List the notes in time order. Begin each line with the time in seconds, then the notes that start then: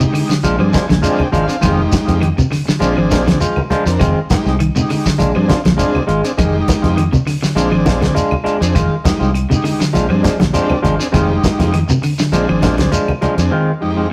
0.00 C3 G#3 D#4 G4, muted clean electric guitar stroke, high conga, shekere
0.14 D3, muted clean electric guitar stroke, open hi-hat, claves, shekere
0.29 D3, muted clean electric guitar stroke, snare, shekere
0.43 A#1 F3 G#3 D4 F4, closed hi-hat, high conga, shekere
0.58 G2 F3 C4 D4 G#4, muted clean electric guitar stroke, claves
0.72 F3 G#3 D4 F4 G#5, kick, snare, closed hi-hat, high conga, shekere
0.88 A#1 D3, muted clean electric guitar stroke, snare, closed hi-hat, low conga, shekere
1.02 F3 G#3 C4 D4 F4 G#4 G5, closed hi-hat, shekere
1.19 muted fingered electric bass stroke, high conga, claves
1.32 G#1 F3 G#3 D4 F4 F5, closed hi-hat, high conga, shekere
1.48 C4 D4 G#4, muted clean electric guitar stroke, closed hi-hat, shekere
1.61 F1 D#3 G#3 C4 D#4 F4 G4, kick, closed hi-hat, low conga, claves, shekere
1.91 muted clean electric guitar stroke, kick, snare, closed hi-hat, high conga, shekere
2.06 F2 G#3 C4 F4, closed hi-hat, high conga, shekere
2.20 D#3, muted clean electric guitar stroke, closed hi-hat, claves
2.36 C3, muted clean electric guitar stroke, high conga, shekere
2.50 D3, muted clean electric guitar stroke, snare, open hi-hat, claves, shekere
2.65 D3, muted clean electric guitar stroke, snare, shekere
2.79 A#1 F3 G#3 C4 D4 F4 G#4, closed hi-hat, shekere
2.96 G#1 F3, muted clean electric guitar stroke, claves
3.10 A#1 F3 G#3 D4 F4, kick, snare, closed hi-hat, high conga, shekere
3.26 D3, muted clean electric guitar stroke, snare, closed hi-hat, low conga, shekere
3.40 F3 G#3 F4, muted clean electric guitar stroke, closed hi-hat, shekere
3.56 high conga, claves
3.70 F3 G#3 D4 F4, muted fingered electric bass stroke, closed hi-hat, high conga, shekere
3.86 F2 C4 D4 A#4, muted clean electric guitar stroke, snare, closed hi-hat, shekere
3.99 F1 D#3 G#3 C4 F4, kick, closed hi-hat, low conga, claves, shekere
4.30 G#3 D#4 G4, muted clean electric guitar stroke, kick, snare, closed hi-hat, high conga, low conga, shekere
4.45 C2 G#3 C4, muted clean electric guitar stroke, snare, shekere
4.59 D#3, muted clean electric guitar stroke, closed hi-hat, claves
4.75 C3 G#3 D#4 G4, muted clean electric guitar stroke, high conga, shekere
4.89 D3, muted clean electric guitar stroke, open hi-hat, claves, shekere
5.05 D3, muted clean electric guitar stroke, kick, snare, shekere
5.18 A#1 G#3 D4 F4, closed hi-hat, high conga, shekere
5.34 G2 F3 C4 D4 G#4, muted clean electric guitar stroke, claves
5.48 D4 F4, muted clean electric guitar stroke, kick, snare, closed hi-hat, high conga, shekere
5.64 A#1 D3, muted clean electric guitar stroke, snare, closed hi-hat, low conga, shekere
5.77 G#3 C4 D4 F4 G#4, kick, closed hi-hat, shekere
5.95 muted fingered electric bass stroke, high conga, claves
6.07 G#1 G#3 F4, muted clean electric guitar stroke, closed hi-hat, shekere
6.24 C4 D4 G#4, muted clean electric guitar stroke, closed hi-hat, shekere
6.37 F1 D#3 G#3 D#4 G4, muted clean electric guitar stroke, kick, closed hi-hat, low conga, claves, shekere
6.67 muted clean electric guitar stroke, kick, snare, closed hi-hat, high conga, shekere
6.82 F2 G#3 C4 F4, closed hi-hat, high conga, shekere
6.97 D#3, closed hi-hat, claves
7.12 C3, muted clean electric guitar stroke, high conga, shekere
7.27 D3, muted clean electric guitar stroke, snare, open hi-hat, claves, shekere
7.43 D3, muted clean electric guitar stroke, snare, shekere
7.55 A#1 G#3 C4 D4 F4 G#4, snare, closed hi-hat, shekere
7.71 G#1 F3, muted clean electric guitar stroke, claves
7.85 A#1 G#3 D4 F4, kick, snare, closed hi-hat, high conga, shekere
8.01 D3, muted clean electric guitar stroke, snare, closed hi-hat, low conga, shekere
8.14 G#3 D4 F4, closed hi-hat, shekere
8.31 high conga, claves
8.44 G#3 D4 F4, muted fingered electric bass stroke, closed hi-hat, shekere
8.59 F2 C4 D4 G#4, muted clean electric guitar stroke, closed hi-hat, shekere
8.74 F1 D#3 G#3 F4, muted clean electric guitar stroke, kick, closed hi-hat, low conga, claves, shekere
9.04 G#3 D#4 G4, muted clean electric guitar stroke, kick, snare, closed hi-hat, high conga, low conga, shekere
9.19 C2 G#3 C4 F4, shekere
9.34 muted clean electric guitar stroke, closed hi-hat, claves
9.49 C3 G#3 D#4 G4, muted clean electric guitar stroke, high conga, shekere
9.64 D3, muted clean electric guitar stroke, open hi-hat, claves, shekere
9.79 D3, muted clean electric guitar stroke, snare, shekere
9.93 A#1 F3 G#3 D4 F4, snare, closed hi-hat, high conga, shekere
10.09 G2 F3 C4 D4 G#4, muted clean electric guitar stroke, claves
10.22 F3 G#3 D4, muted clean electric guitar stroke, kick, snare, closed hi-hat, high conga, shekere
10.39 A#1 D3, muted clean electric guitar stroke, snare, closed hi-hat, low conga, shekere
10.53 F3 G#3 C4 D4 F4 G4, closed hi-hat, shekere
10.70 muted fingered electric bass stroke, high conga, claves
10.82 G#1 F3 G#3 D4 F4, closed hi-hat, high conga, shekere
10.98 C4 D4 G#4, muted clean electric guitar stroke, snare, closed hi-hat, shekere
11.12 F1 D#3 G#3 C4 D#4 F4 G4, kick, closed hi-hat, low conga, claves, shekere
11.42 muted clean electric guitar stroke, kick, snare, closed hi-hat, high conga, shekere
11.58 F2 G#3 C4 F4, snare, closed hi-hat, high conga, shekere
11.72 D#3, muted clean electric guitar stroke, closed hi-hat, claves
11.88 C3, muted clean electric guitar stroke, high conga, shekere
12.02 D3, muted clean electric guitar stroke, open hi-hat, claves, shekere
12.18 D3, muted clean electric guitar stroke, snare, shekere
12.32 A#1 F3 G#3 C4 D4 F4 G#4, closed hi-hat, shekere
12.48 G#1 F3, muted clean electric guitar stroke, claves
12.62 A#1 F3 G#3 D4 F4, kick, snare, closed hi-hat, high conga, shekere
12.78 D3, muted clean electric guitar stroke, snare, closed hi-hat, low conga, shekere
12.91 F3 G#3 D4 F4, closed hi-hat, shekere
13.08 high conga, claves
13.21 F3 G#3 D4 F4, muted fingered electric bass stroke, closed hi-hat, high conga, shekere
13.37 F2 C4 D4 G#4, muted clean electric guitar stroke, closed hi-hat, shekere
13.51 D#3 G#3 C4 F4
13.81 F2 G#3 D#4 G4, muted clean electric guitar stroke
13.97 G#3 C4 F4